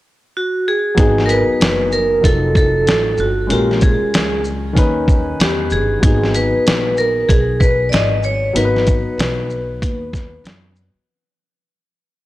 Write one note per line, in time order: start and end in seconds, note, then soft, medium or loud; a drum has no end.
0.37 0.68 F#4 medium
0.68 1.21 G#4 medium
0.95 1.46 G#1 loud
0.95 2.20 F#3 medium
0.95 2.21 B3 medium
0.95 2.21 D#4 medium
0.95 kick loud
0.95 closed hi-hat medium
1.00 2.22 G#4 medium
1.18 snare soft
1.26 1.30 A#4 medium
1.26 closed hi-hat soft
1.26 shaker soft
1.30 1.95 B4 medium
1.48 muted upright bass stroke soft
1.60 2.20 F#1 medium
1.60 snare loud
1.60 closed hi-hat medium
1.92 2.25 A#4 medium
1.92 shaker soft
2.21 2.84 F1 medium
2.21 3.48 F3 medium
2.21 3.46 F#3 medium
2.21 3.47 D#4 medium
2.21 2.56 A4 medium
2.21 kick medium
2.21 closed hi-hat medium
2.26 3.49 A4 medium
2.55 3.21 A4 medium
2.55 kick medium
2.55 shaker soft
2.87 3.17 A1 medium
2.87 snare medium
2.87 closed hi-hat medium
3.18 3.48 G1 medium
3.18 3.52 F#4 medium
3.18 shaker soft
3.47 3.98 A#1 medium
3.47 4.72 G#3 medium
3.47 4.73 C#4 medium
3.47 4.74 F4 medium
3.47 closed hi-hat medium
3.52 3.80 G4 medium
3.52 4.75 A#4 medium
3.71 snare soft
3.81 4.42 G#4 medium
3.81 kick medium
3.81 closed hi-hat soft
3.81 shaker soft
4.01 muted upright bass stroke soft
4.14 4.74 C#2 medium
4.14 snare loud
4.14 closed hi-hat medium
4.44 shaker soft
4.73 5.37 D#2 medium
4.73 5.99 D#3 medium
4.73 6.00 C#4 medium
4.73 6.00 D#4 medium
4.73 kick medium
4.77 6.01 B4 medium
4.77 closed hi-hat medium
5.08 kick medium
5.08 shaker soft
5.40 5.73 E2 medium
5.40 5.73 G4 medium
5.40 snare medium
5.40 closed hi-hat medium
5.70 6.01 G1 medium
5.70 6.37 G#4 medium
5.70 shaker soft
6.00 6.51 G#1 loud
6.00 8.50 F#3 medium
6.00 8.51 B3 medium
6.00 8.52 D#4 medium
6.00 kick loud
6.00 closed hi-hat loud
6.05 8.53 G#4 medium
6.23 snare soft
6.34 7.00 B4 medium
6.34 closed hi-hat medium
6.34 shaker soft
6.54 muted upright bass stroke soft
6.67 7.26 A#1 medium
6.67 snare medium
6.67 closed hi-hat medium
6.97 7.30 A#4 medium
6.97 shaker soft
7.29 7.89 B1 medium
7.29 7.61 G#4 medium
7.29 kick medium
7.29 closed hi-hat medium
7.60 7.87 B4 medium
7.60 kick medium
7.60 shaker medium
7.89 8.52 G#1 medium
7.89 7.94 D5 medium
7.89 8.25 D#5 medium
7.89 closed hi-hat medium
7.94 snare medium
8.23 8.54 C#5 medium
8.23 shaker soft
8.53 9.03 G#1 medium
8.53 11.03 F#3 medium
8.53 11.04 B3 medium
8.53 11.05 D#4 medium
8.53 10.41 B4 medium
8.53 closed hi-hat medium
8.58 8.65 A#4 medium
8.65 11.09 B4 medium
8.76 snare soft
8.87 kick medium
8.87 closed hi-hat soft
8.87 shaker soft
9.06 muted upright bass stroke soft
9.18 9.78 B1 medium
9.18 snare loud
9.18 closed hi-hat medium
9.50 shaker soft
9.82 10.42 D#2 medium
9.82 kick medium
9.82 closed hi-hat medium
10.13 kick medium
10.13 snare soft
10.13 shaker soft
10.44 10.93 F#2 medium
10.44 snare medium
10.44 closed hi-hat medium
10.76 shaker soft
10.94 muted upright bass stroke soft